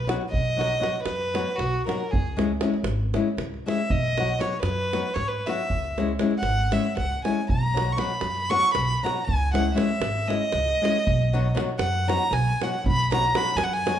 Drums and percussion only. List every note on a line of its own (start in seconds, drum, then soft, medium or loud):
0.09 davul high medium
0.21 davul high soft
0.33 davul low medium
0.61 davul high medium
0.83 davul high medium
0.95 davul high soft
1.06 davul high medium
1.35 davul high medium
1.59 davul high medium
1.74 davul high soft
1.89 davul high medium
2.00 davul high soft
2.13 davul low loud
2.39 davul high medium
2.61 davul high medium
2.74 davul high soft
2.84 davul high medium
3.14 davul high medium
3.38 davul high medium
3.54 davul high soft
3.68 davul high medium
3.78 davul high soft
3.90 davul low loud
4.18 davul high medium
4.41 davul high medium
4.53 davul high soft
4.63 davul high medium
4.93 davul high medium
5.16 davul high medium
5.33 davul high soft
5.47 davul high medium
5.70 davul low medium
5.85 davul high soft
5.98 davul high medium
6.08 davul high soft
6.19 davul high medium
6.31 davul high soft
6.43 davul high medium
6.72 davul high medium
6.85 davul high soft
6.97 davul high medium
6.97 davul low medium
7.12 davul high soft
7.25 davul high medium
7.37 davul high soft
7.49 davul low medium
7.77 davul high medium
7.98 davul high medium
8.10 davul high soft
8.21 davul high medium
8.51 davul high medium
8.75 davul high medium
8.91 davul high soft
9.06 davul high medium
9.17 davul high soft
9.29 davul low medium
9.55 davul high medium
9.78 davul high medium
9.89 davul high soft
10.02 davul high medium
10.30 davul high medium
10.52 davul high medium
10.69 davul high soft
10.85 davul high medium
10.97 davul high soft
11.07 davul low medium
11.57 davul high medium
11.69 davul high soft
11.79 davul high medium
12.10 davul high medium
12.33 davul high medium
12.48 davul high soft
12.62 davul high medium
12.74 davul high soft
12.86 davul low loud
12.99 davul high soft
13.12 davul high medium
13.24 davul high soft
13.35 davul high medium
13.47 davul high soft
13.58 davul high medium
13.73 davul high soft
13.87 davul high medium